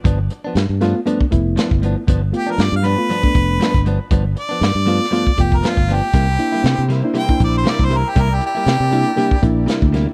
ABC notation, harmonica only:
X:1
M:4/4
L:1/16
Q:"Swing 16ths" 1/4=118
K:Gmix
V:1 name="Harmonica"
z16 | z2 G _B d f =B8 z2 | z2 d8 G _B F2 G2- | G6 z2 g2 d c d c _B G |
_B G G8 z6 |]